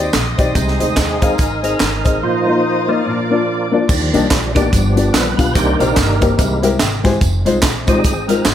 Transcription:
Already playing: string section D#5 G5 C6 D#6
0.13 upright bass A#1, snare, clap, closed hi-hat, tambourine
0.38 upright bass B1, grand piano C4 D#4 G4 D5, kick, closed hi-hat, tambourine
0.54 upright bass C2, grand piano C3, tonewheel organ G#3 C4 D#4, string section G#5, kick, closed hi-hat, tambourine
0.68 snare
0.79 upright bass D2, grand piano C4 D#4 G#4 D#5, tonewheel organ C4 D#4 G#4, closed hi-hat, tambourine
0.96 upright bass D#2, kick, snare, clap, closed hi-hat, tambourine
1.21 tonewheel organ G#3 C4 D#4 A#4, grand piano C4 D#4 G#4 F5, kick, closed hi-hat, tambourine
1.38 upright bass G#1, kick, closed hi-hat, tambourine
1.63 grand piano C4 D#4 G#4 D#5, tonewheel organ D#4 A#4, closed hi-hat, tambourine
1.80 upright bass G#1, snare, clap, closed hi-hat, tambourine
2.04 upright bass A1, grand piano C4 D#4 G#4 D#5, kick, closed hi-hat, tambourine
2.22 grand piano A#2, tonewheel organ F3 A#3 D#4 F4 C5, string section D#5 F5 A#5 D#6
2.46 grand piano A#3 D#4 F4 D#5
2.88 grand piano A#3 D#4 F4 D#5, tonewheel organ F4 A#4 D5
3.05 grand piano A#2, tonewheel organ F3 A#3 D4, string section D5 D6
3.30 grand piano A#3 D4 F4 D5
3.72 grand piano A#3 D4 F4 D5
3.88 upright bass D#2, grand piano D#3, tonewheel organ F3 G3 D4, kick, crash, tambourine
4.13 upright bass C2, grand piano A#3 D4 D#4 G4 D5, closed hi-hat, tambourine
4.30 upright bass A#1, kick, snare, clap, closed hi-hat, tambourine
4.55 grand piano A#3 D4 D#4 G4 D5, tonewheel organ B3 D4 G4, kick, closed hi-hat, tambourine
4.71 upright bass G1, grand piano G2, tonewheel organ F3 B3 D4, kick, closed hi-hat, tambourine
4.96 grand piano B3 D4 F4 G4 D5, closed hi-hat, tambourine
5.13 upright bass A#1, tonewheel organ B4, snare, clap, closed hi-hat, tambourine
5.37 upright bass B1, grand piano B3 D4 F4 G4 F5, tonewheel organ B4, kick, closed hi-hat, tambourine
5.54 upright bass C2, grand piano C3, tonewheel organ D#3 A#3 D4 D#4 G4 C5, kick, closed hi-hat, tambourine
5.79 upright bass A#1, grand piano A#3 C4 D#4 G4 C5, tonewheel organ D#4 G4 A#4, closed hi-hat, tambourine
5.96 upright bass G1, kick, snare, clap, closed hi-hat, tambourine
6.21 grand piano A#3 C4 D#4 G4 A#4, kick, closed hi-hat, tambourine
6.38 upright bass C2, grand piano C3, tonewheel organ G#3 A#3 E4, kick, closed hi-hat, tambourine
6.62 grand piano G#3 C4 E4 G4 A#4 E5, closed hi-hat, tambourine
6.79 upright bass G#1, grand piano G5, snare, clap, closed hi-hat, tambourine
7.04 grand piano G#3 C4 E4 G4 C5 G#5, kick, snare, closed hi-hat, tambourine
7.21 upright bass F1, kick, closed hi-hat, tambourine
7.45 upright bass C2, grand piano G#3 C4 D#4 F4 C5, closed hi-hat, tambourine
7.62 upright bass A#1, kick, snare, clap, closed hi-hat, tambourine
7.87 tonewheel organ G3 G#3 C4 D#4 G#4, grand piano G#3 C4 D#4 F4 C5, kick, closed hi-hat, tambourine
8.04 upright bass G#1, kick, closed hi-hat, tambourine
8.28 grand piano G#3 C4 D#4 F4 A#4, tonewheel organ A#4, closed hi-hat, tambourine
8.45 upright bass G#1, tonewheel organ C5, snare, clap, closed hi-hat, tambourine

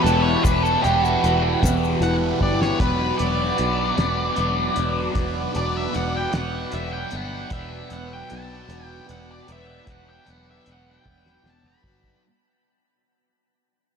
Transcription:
Already playing: harmonium G3 B3 E4 B4
0.03 picked electric bass E1, distorted electric guitar B2 E3, lead electric guitar A4, closed hi-hat
0.07 distorted electric guitar E2, shaker
0.22 lead electric guitar C#5
0.43 picked electric bass E1, distorted electric guitar E2 B2 E3, lead electric guitar B4, kick, closed hi-hat, shaker
0.63 lead electric guitar A4, shaker
0.82 picked electric bass E1, distorted electric guitar E2 B2 E3, lead electric guitar G4, closed hi-hat
0.86 shaker
1.02 lead electric guitar F#4, shaker
1.22 picked electric bass E1, distorted electric guitar E2 B2 E3, closed hi-hat
1.26 shaker
1.62 picked electric bass E1, distorted electric guitar E2 B2 E3, kick, snare, closed hi-hat, shaker
1.84 shaker
2.01 picked electric bass E1, distorted electric guitar E2 B2 E3, lead electric guitar F#5, closed hi-hat
2.40 picked electric bass G1, distorted electric guitar E2 B2 E3, lead electric guitar D5, kick
2.62 lead electric guitar C#5, snare
2.78 picked electric bass E1, distorted electric guitar B2 F#3 B3, harmonium B3 D4 B4, lead electric guitar B4, kick, closed hi-hat
3.18 picked electric bass E1, distorted electric guitar B2 F#3 B3, lead electric guitar D5, closed hi-hat
3.57 picked electric bass B1, distorted electric guitar B2 F#3 B3, closed hi-hat
3.96 picked electric bass E1, distorted electric guitar B2 F#3 B3, snare, closed hi-hat
4.35 picked electric bass E1, distorted electric guitar B2 F#3 B3, closed hi-hat
4.74 picked electric bass E1, distorted electric guitar B2 F#3 B3, closed hi-hat
5.12 picked electric bass E1, distorted electric guitar B2 F#3 B3, kick, closed hi-hat
5.54 picked electric bass E1, distorted electric guitar B2 F#3 B3, lead electric guitar D5, closed hi-hat
5.77 lead electric guitar E5
5.92 picked electric bass E1, distorted electric guitar B2 F#3 B3, lead electric guitar F#5, closed hi-hat
6.17 lead electric guitar G5
6.31 picked electric bass E1, distorted electric guitar B2 F#3 B3, lead electric guitar F#5, snare, closed hi-hat
6.72 picked electric bass E1, distorted electric guitar B2 F#3 B3, lead electric guitar E5, closed hi-hat
6.93 lead electric guitar G5
7.11 picked electric bass G1, distorted electric guitar B2 F#3 B3, closed hi-hat
7.16 lead electric guitar F#5
7.50 picked electric bass E1, distorted electric guitar B2 F#3 B3, lead electric guitar E5, kick, closed hi-hat
7.89 picked electric bass E1, distorted electric guitar B2 F#3 B3, lead electric guitar F#5, closed hi-hat
8.13 lead electric guitar G5
8.29 picked electric bass B1, distorted electric guitar B2 F#3 B3, lead electric guitar A5, closed hi-hat
8.68 picked electric bass E1, distorted electric guitar B2 F#3 B3, closed hi-hat
8.85 lead electric guitar G5
9.07 picked electric bass E1, distorted electric guitar B2 F#3 B3, lead electric guitar F#5, closed hi-hat
9.31 lead electric guitar D5
9.47 picked electric bass E1, distorted electric guitar B2 F#3 B3, closed hi-hat
9.52 lead electric guitar E5
9.85 picked electric bass E1, distorted electric guitar B2 F#3 B3, kick, closed hi-hat
9.90 lead electric guitar F#5
10.09 lead electric guitar G5
10.25 picked electric bass E1, distorted electric guitar B2 F#3 B3, closed hi-hat
10.31 lead electric guitar F#5
10.50 lead electric guitar E5
10.64 picked electric bass E1, distorted electric guitar B2 F#3 B3, closed hi-hat
10.72 lead electric guitar F#5
10.91 lead electric guitar G5
11.04 picked electric bass E1, distorted electric guitar B2 F#3 B3, kick, high tom
11.26 snare
11.43 picked electric bass E1, distorted electric guitar B2 F#3 B3, snare
11.50 lead electric guitar A5
11.64 lead electric guitar B5, mid tom
11.82 picked electric bass G1, distorted electric guitar B2 F#3 B3, kick
12.04 kick

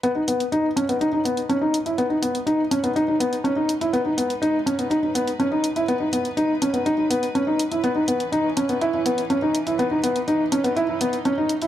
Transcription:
0.03 string section G#3 D#4 B4, felt piano B3, closed hi-hat
0.15 felt piano D#4
0.28 felt piano B3, closed hi-hat
0.40 closed hi-hat
0.52 felt piano D#4, closed hi-hat
0.76 felt piano C#4, closed hi-hat
0.89 felt piano B3, closed hi-hat
1.01 felt piano D#4, closed hi-hat
1.13 felt piano D#4
1.25 felt piano B3, closed hi-hat
1.37 closed hi-hat
1.49 felt piano C#4, closed hi-hat
1.61 felt piano D#4
1.74 closed hi-hat
1.86 felt piano E4, closed hi-hat
1.98 felt piano B3, closed hi-hat
2.10 felt piano D#4
2.22 felt piano B3, closed hi-hat
2.35 closed hi-hat
2.46 felt piano D#4, closed hi-hat
2.71 felt piano C#4, closed hi-hat
2.83 felt piano B3, closed hi-hat
2.96 felt piano D#4, closed hi-hat
3.08 felt piano D#4
3.20 felt piano B3, closed hi-hat
3.33 closed hi-hat
3.44 felt piano C#4, closed hi-hat
3.56 felt piano D#4
3.69 closed hi-hat
3.81 felt piano E4, closed hi-hat
3.93 felt piano B3, closed hi-hat
4.06 felt piano D#4
4.17 felt piano B3, closed hi-hat
4.30 closed hi-hat
4.42 felt piano D#4, closed hi-hat
4.66 felt piano C#4, closed hi-hat
4.79 felt piano B3, closed hi-hat
4.91 felt piano D#4, closed hi-hat
5.03 felt piano D#4
5.15 felt piano B3, closed hi-hat
5.28 closed hi-hat
5.40 felt piano C#4, closed hi-hat
5.52 felt piano D#4
5.64 closed hi-hat
5.76 felt piano E4, closed hi-hat
5.88 felt piano B3, closed hi-hat
6.00 felt piano D#4
6.13 felt piano B3, closed hi-hat
6.25 closed hi-hat
6.37 felt piano D#4, closed hi-hat
6.62 felt piano C#4, closed hi-hat
6.73 felt piano B3, closed hi-hat
6.86 felt piano D#4, closed hi-hat
6.98 felt piano D#4
7.10 felt piano B3, closed hi-hat
7.23 closed hi-hat
7.35 felt piano C#4, closed hi-hat
7.47 felt piano D#4
7.59 closed hi-hat
7.71 felt piano E4, closed hi-hat
7.84 string section E3 C#4, felt piano B3, closed hi-hat
7.96 felt piano D#4
8.08 felt piano B3, closed hi-hat
8.20 closed hi-hat
8.32 felt piano D#4, closed hi-hat
8.57 felt piano C#4, closed hi-hat
8.69 felt piano B3, closed hi-hat
8.81 felt piano E4, closed hi-hat
8.94 felt piano E4
9.06 felt piano B3, closed hi-hat
9.18 closed hi-hat
9.30 felt piano C#4, closed hi-hat
9.42 felt piano D#4
9.55 closed hi-hat
9.67 felt piano E4, closed hi-hat
9.79 felt piano B3, string section D#4, closed hi-hat
9.91 felt piano D#4
10.03 felt piano B3, closed hi-hat
10.16 closed hi-hat
10.28 felt piano D#4, closed hi-hat
10.52 felt piano C#4, closed hi-hat
10.64 felt piano B3, closed hi-hat
10.76 felt piano E4, closed hi-hat
10.89 felt piano E4
11.01 felt piano B3, closed hi-hat
11.13 closed hi-hat
11.25 felt piano C#4, closed hi-hat
11.38 felt piano D#4
11.49 closed hi-hat
11.62 felt piano E4, closed hi-hat

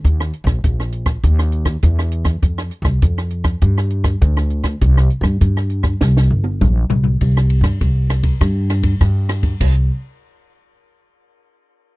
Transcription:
0.04 upright bass D#2, kick, closed hi-hat
0.20 cross-stick
0.33 closed hi-hat
0.44 upright bass A#1, kick, cross-stick
0.64 upright bass A#1, kick, closed hi-hat
0.80 cross-stick
0.92 closed hi-hat
1.06 kick, cross-stick
1.23 upright bass D#2, kick, closed hi-hat
1.39 cross-stick, closed hi-hat
1.52 closed hi-hat
1.65 kick, cross-stick, closed hi-hat
1.83 upright bass E2, kick, closed hi-hat
1.99 cross-stick
2.12 closed hi-hat
2.25 kick, cross-stick
2.42 upright bass F2, kick, closed hi-hat
2.58 cross-stick, closed hi-hat
2.71 closed hi-hat
2.82 upright bass C2, kick, cross-stick
3.02 upright bass F2, kick, closed hi-hat
3.18 cross-stick
3.31 closed hi-hat
3.44 kick, cross-stick
3.61 upright bass G2, kick, closed hi-hat
3.78 cross-stick
3.90 closed hi-hat
4.04 kick, cross-stick
4.22 upright bass D2, kick, closed hi-hat
4.37 cross-stick
4.50 closed hi-hat
4.64 kick, cross-stick, closed hi-hat
4.81 upright bass C2, kick, closed hi-hat
4.97 cross-stick
5.10 closed hi-hat
5.21 upright bass G2, kick, cross-stick
5.41 upright bass G2, kick, closed hi-hat
5.57 cross-stick
5.70 closed hi-hat
5.83 kick, cross-stick
6.01 upright bass C2, kick, snare
6.17 snare
6.31 upright bass G1
6.44 high tom
6.61 upright bass A#1, kick, mid tom
6.90 upright bass C2, floor tom
7.04 floor tom
7.21 upright bass C2, kick, ride
7.37 cross-stick
7.50 ride
7.61 upright bass G2, kick, cross-stick, ride
7.81 upright bass C2, kick, ride
8.10 cross-stick, ride
8.23 kick, ride
8.41 upright bass G2, kick, cross-stick, ride
8.70 cross-stick, ride
8.83 kick, ride
9.01 upright bass G2, kick, cross-stick, ride
9.29 cross-stick, ride
9.43 kick, ride
9.61 upright bass C2, kick, crash

